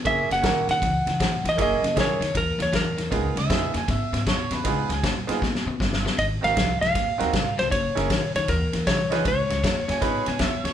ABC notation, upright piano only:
X:1
M:4/4
L:1/8
Q:"Swing" 1/4=156
K:Gb
V:1 name="Upright piano"
[B,D_FA] z [B,DFB] z4 z | [B,D_FA] z [B,DFA] z4 z | [CEFA] z [CEFA] z4 z | [CEFA] z2 [CEFA] z4 |
z [=CEGB] z3 [CEGB] z2 | z [D_FAB] z4 z [E=FAc] | z4 [EFAc] z3 |]